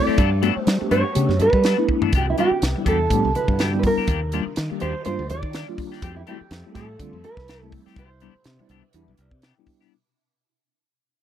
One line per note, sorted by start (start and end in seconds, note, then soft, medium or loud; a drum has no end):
0.00 0.17 F3 medium
0.00 2.10 G3 medium
0.00 0.19 A3 medium
0.00 2.11 A3 medium
0.00 0.19 C4 medium
0.00 0.18 E4 medium
0.00 0.19 E4 medium
0.00 0.19 A4 medium
0.00 0.61 D5 loud
0.07 0.17 A3 soft
0.07 0.18 C4 medium
0.07 0.18 G4 medium
0.07 muted fingered electric bass stroke soft
0.18 0.49 G2 loud
0.18 0.31 F#3 medium
0.18 2.11 F#3 medium
0.18 0.31 B3 medium
0.18 2.11 B3 medium
0.18 0.30 D4 medium
0.18 0.30 A4 medium
0.18 kick loud
0.18 closed hi-hat medium
0.31 muted clean electric guitar stroke soft
0.42 0.56 F#3 medium
0.42 0.51 A3 medium
0.42 0.55 B3 medium
0.42 0.51 B3 medium
0.42 0.51 D4 medium
0.42 0.55 D4 medium
0.42 0.51 F#4 loud
0.42 0.54 A4 medium
0.42 closed hi-hat medium
0.55 0.62 D4 soft
0.55 0.62 F#4 soft
0.55 muted clean electric guitar stroke soft
0.55 muted fingered electric bass stroke soft
0.61 0.88 C5 loud
0.67 0.78 G3 medium
0.67 0.74 D4 soft
0.67 0.74 F#4 soft
0.67 snare loud
0.67 closed hi-hat medium
0.81 1.03 A3 medium
0.81 1.03 B3 medium
0.81 1.03 D4 medium
0.81 1.03 G4 medium
0.81 muted clean electric guitar stroke soft
0.81 muted fingered electric bass stroke soft
0.91 1.02 G2 medium
0.91 1.05 F#3 medium
0.91 1.04 B3 medium
0.91 1.04 D4 medium
0.91 1.03 A4 medium
0.91 1.41 C#5 loud
0.91 closed hi-hat medium
1.04 muted clean electric guitar stroke soft
1.15 1.27 C#3 medium
1.15 1.31 A3 medium
1.15 1.31 B3 medium
1.15 1.32 D4 medium
1.15 1.32 G4 loud
1.15 muted clean electric guitar stroke soft
1.15 closed hi-hat medium
1.29 1.38 F#2 medium
1.29 snare soft
1.40 1.51 G2 medium
1.40 1.86 B4 medium
1.40 muted clean electric guitar stroke soft
1.40 closed hi-hat medium
1.53 1.73 G3 medium
1.53 kick medium
1.64 1.78 F#3 medium
1.64 1.77 B3 medium
1.64 1.77 D4 medium
1.64 1.77 A4 medium
1.64 snare loud
1.64 closed hi-hat medium
1.78 2.13 A3 medium
1.78 2.13 B3 medium
1.78 2.14 D4 medium
1.78 2.14 E4 medium
1.78 muted clean electric guitar stroke soft
1.89 muted clean electric guitar stroke soft
1.89 kick medium
2.02 2.13 B3 soft
2.02 2.13 D4 soft
2.02 2.13 A4 medium
2.02 floor tom medium
2.13 2.33 C2 medium
2.13 4.06 C3 medium
2.13 4.06 D3 medium
2.13 2.27 E3 medium
2.13 4.06 B3 medium
2.13 2.27 B3 medium
2.13 2.27 D4 medium
2.13 4.06 E4 medium
2.13 2.26 G4 medium
2.13 kick loud
2.13 closed hi-hat medium
2.17 2.29 G4 medium
2.27 2.39 E4 medium
2.27 muted clean electric guitar stroke soft
2.38 2.51 E3 medium
2.38 2.46 G3 medium
2.38 2.46 B3 medium
2.38 2.51 B3 medium
2.38 2.46 D4 medium
2.38 2.51 D4 medium
2.38 2.46 E4 loud
2.38 2.50 G4 medium
2.38 2.87 G4 medium
2.38 closed hi-hat medium
2.51 2.57 D4 soft
2.51 2.58 G4 soft
2.51 muted fingered electric bass stroke soft
2.51 muted clean electric guitar stroke soft
2.62 2.73 C2 medium
2.62 2.70 G4 soft
2.62 snare loud
2.62 closed hi-hat medium
2.76 2.98 G3 medium
2.76 2.99 B3 medium
2.76 2.99 D4 medium
2.76 2.99 E4 medium
2.76 muted clean electric guitar stroke soft
2.85 3.06 E2 medium
2.85 2.99 E3 medium
2.85 2.99 B3 medium
2.85 2.99 D4 medium
2.85 2.98 G4 medium
2.85 3.32 A4 medium
2.85 kick medium
2.85 closed hi-hat medium
2.99 muted clean electric guitar stroke soft
3.10 3.21 A2 medium
3.10 3.28 G3 medium
3.10 3.28 B3 medium
3.10 3.28 D4 medium
3.10 3.28 G4 loud
3.10 muted clean electric guitar stroke soft
3.10 kick medium
3.10 closed hi-hat medium
3.25 3.33 C2 medium
3.35 3.43 D4 soft
3.35 3.43 G4 soft
3.35 3.61 B4 medium
3.35 muted clean electric guitar stroke soft
3.35 closed hi-hat medium
3.48 3.88 G2 medium
3.48 kick medium
3.59 3.73 E3 medium
3.59 3.73 B3 medium
3.59 3.73 D4 medium
3.59 3.72 G4 medium
3.59 3.79 G4 loud
3.59 snare loud
3.59 closed hi-hat medium
3.73 4.09 G3 medium
3.73 4.09 B3 medium
3.73 4.09 D4 medium
3.73 4.09 E4 medium
3.73 muted clean electric guitar stroke soft
3.79 3.85 B4 medium
3.83 4.81 A#4 medium
3.83 muted clean electric guitar stroke soft
3.83 kick medium
3.83 open hi-hat medium
3.97 4.08 B3 soft
3.97 4.07 D4 medium
3.97 4.08 G4 medium
3.97 muted fingered electric bass stroke soft
4.07 4.39 D#2 loud
4.07 6.01 D#3 medium
4.07 4.21 F3 medium
4.07 6.01 G3 medium
4.07 4.21 A#3 medium
4.07 4.20 D4 medium
4.07 6.01 D4 medium
4.07 6.01 F4 medium
4.07 4.20 G4 medium
4.07 kick loud
4.07 closed hi-hat medium
4.21 muted clean electric guitar stroke soft
4.32 4.46 F3 medium
4.32 4.41 G3 medium
4.32 4.41 A#3 medium
4.32 4.45 A#3 medium
4.32 4.45 D4 medium
4.32 4.41 D4 medium
4.32 4.42 F4 medium
4.32 4.45 G4 medium
4.32 closed hi-hat medium
4.46 muted clean electric guitar stroke soft
4.46 muted fingered electric bass stroke soft
4.56 4.68 D#3 medium
4.56 snare loud
4.56 closed hi-hat medium
4.70 4.93 G3 medium
4.70 4.93 A#3 medium
4.70 4.93 D4 medium
4.70 4.93 G4 medium
4.70 muted clean electric guitar stroke soft
4.70 muted fingered electric bass stroke soft
4.80 4.93 D#2 medium
4.80 4.94 F3 medium
4.80 4.94 A#3 medium
4.80 4.94 D4 medium
4.80 4.93 G4 medium
4.80 5.04 C5 medium
4.80 closed hi-hat medium
4.94 muted clean electric guitar stroke soft
5.05 5.17 G2 medium
5.05 5.22 G3 medium
5.05 5.22 A#3 medium
5.05 5.22 D4 medium
5.05 5.22 F4 loud
5.05 5.28 C5 medium
5.05 muted clean electric guitar stroke soft
5.05 closed hi-hat medium
5.19 5.28 D2 loud
5.30 5.41 D#2 loud
5.30 5.37 D4 soft
5.30 5.38 F4 soft
5.30 5.75 D5 medium
5.30 muted clean electric guitar stroke soft
5.30 closed hi-hat medium
5.42 5.63 D#3 medium
5.42 kick medium
5.53 5.67 F3 medium
5.53 5.67 A#3 medium
5.53 5.67 D4 medium
5.53 5.67 G4 medium
5.53 snare loud
5.53 closed hi-hat medium
5.68 6.04 G3 medium
5.68 6.04 A#3 medium
5.68 6.04 D4 medium
5.68 6.04 F4 medium
5.68 muted clean electric guitar stroke soft
5.78 muted clean electric guitar stroke soft
5.78 kick medium
5.78 open hi-hat medium
5.92 6.03 A#3 soft
5.92 6.02 D4 soft
5.92 6.02 G4 medium
5.92 snare soft
6.02 6.23 F2 loud
6.02 6.16 E3 medium
6.02 7.96 F3 medium
6.02 7.96 G3 medium
6.02 7.96 A3 medium
6.02 6.15 A3 medium
6.02 6.15 C4 medium
6.02 9.89 E4 medium
6.02 6.15 G4 medium
6.02 6.16 G4 medium
6.02 kick loud
6.02 closed hi-hat medium
6.16 6.21 E4 medium
6.16 muted clean electric guitar stroke soft
6.27 6.40 E3 medium
6.27 6.36 G3 loud
6.27 6.39 A3 medium
6.27 6.36 A3 medium
6.27 6.39 C4 medium
6.27 6.36 C4 medium
6.27 6.36 E4 loud
6.27 6.39 G4 medium
6.27 6.74 G4 medium
6.27 closed hi-hat soft
6.40 muted clean electric guitar stroke soft
6.40 muted fingered electric bass stroke soft
6.51 6.62 F2 loud
6.51 6.59 C4 soft
6.51 6.59 G4 soft
6.51 snare loud
6.51 closed hi-hat medium
6.64 6.88 G3 medium
6.64 6.88 A3 medium
6.64 6.88 C4 medium
6.64 6.88 E4 medium
6.64 muted clean electric guitar stroke soft
6.75 6.95 A2 medium
6.75 6.89 E3 medium
6.75 6.88 A3 medium
6.75 6.88 C4 medium
6.75 6.87 G4 medium
6.75 7.25 A4 loud
6.75 kick medium
6.75 snare soft
6.75 closed hi-hat medium
6.88 muted clean electric guitar stroke soft
7.00 7.11 D3 loud
7.00 7.16 G3 medium
7.00 7.17 A3 medium
7.00 7.17 C4 medium
7.00 7.17 F4 loud
7.00 muted clean electric guitar stroke soft
7.00 kick medium
7.00 closed hi-hat medium
7.13 7.22 F2 medium
7.24 7.31 C4 soft
7.24 7.32 E4 soft
7.24 7.70 B4 medium
7.24 muted clean electric guitar stroke soft
7.24 closed hi-hat medium
7.37 7.77 C2 medium
7.37 kick medium
7.37 snare soft
7.48 7.62 E3 medium
7.48 7.61 A3 medium
7.48 7.60 C4 medium
7.48 7.60 G4 medium
7.48 snare loud
7.48 closed hi-hat medium
7.61 7.98 G3 medium
7.61 7.98 A3 medium
7.61 7.98 C4 medium
7.61 7.98 E4 medium
7.61 muted clean electric guitar stroke soft
7.72 muted clean electric guitar stroke soft
7.72 kick medium
7.72 open hi-hat medium
7.86 7.97 A3 soft
7.86 7.97 C4 medium
7.86 7.97 G4 medium
7.86 muted fingered electric bass stroke soft
7.86 snare soft
7.96 8.28 C2 medium
7.96 9.91 B2 medium
7.96 9.91 C3 medium
7.96 8.11 E3 medium
7.96 8.10 B3 medium
7.96 8.09 D4 medium
7.96 9.91 D4 medium
7.96 8.09 G4 medium
7.96 8.91 C5 loud
7.96 kick loud
7.96 closed hi-hat medium
8.10 muted clean electric guitar stroke soft
8.20 8.35 E3 medium
8.20 8.30 G3 medium
8.20 8.34 B3 medium
8.20 8.30 B3 medium
8.20 8.34 D4 medium
8.20 8.30 D4 medium
8.20 8.31 E4 loud
8.20 8.34 G4 medium
8.20 closed hi-hat medium
8.35 muted clean electric guitar stroke soft
8.35 muted fingered electric bass stroke soft
8.44 8.57 C3 medium
8.44 snare loud
8.44 closed hi-hat medium
8.59 8.82 G3 medium
8.59 8.82 B3 medium
8.59 8.82 D4 medium
8.59 8.83 E4 medium
8.59 muted fingered electric bass stroke soft
8.59 muted clean electric guitar stroke medium
8.69 8.81 C2 medium
8.69 8.83 E3 medium
8.69 8.83 B3 medium
8.69 8.82 D4 medium
8.69 8.82 G4 medium
8.69 closed hi-hat medium
8.83 muted clean electric guitar stroke soft
8.91 9.05 E2 medium
8.91 9.10 G3 loud
8.91 9.40 B4 loud
8.91 muted clean electric guitar stroke soft
8.91 closed hi-hat medium
8.95 9.11 B3 loud
8.95 9.11 D4 medium
8.95 9.11 E4 loud
9.08 9.17 B1 medium
9.17 9.30 C2 medium
9.17 muted clean electric guitar stroke soft
9.17 closed hi-hat medium
9.22 9.27 D4 soft
9.22 9.27 E4 soft
9.22 9.43 D5 medium
9.31 9.52 C3 medium
9.31 kick medium
9.42 9.56 E3 medium
9.42 9.55 B3 medium
9.42 9.55 D4 medium
9.42 9.55 G4 medium
9.42 9.89 G5 medium
9.42 snare loud
9.42 closed hi-hat medium
9.56 9.93 G3 medium
9.56 9.93 B3 medium
9.56 9.93 D4 medium
9.56 9.93 E4 medium
9.56 muted clean electric guitar stroke soft
9.66 muted clean electric guitar stroke soft
9.66 kick medium
9.66 open hi-hat medium
9.81 9.93 B3 soft
9.81 9.92 D4 medium
9.81 9.92 G4 medium
9.81 snare soft